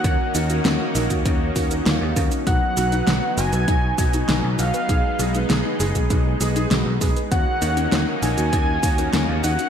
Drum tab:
HH |x-oxx-oxx-oxx-ox|x-oxx-oxx-oxx-ox|x-oxx-oxx-oxx-ox|x-oxx-oxx-oxx-ox|
SH |x-xxx-xxx-xxx-xx|x-xxx-xxx-xxx-xx|x-xxx-xxx-xxx-xx|x-xxx-xxx-xxx-xx|
SD |----o-------o---|----o-------o---|----o-------o---|----o-------o---|
BD |o------oo-o---o-|o-------o-o-----|o------oo-----o-|o-------o-o-----|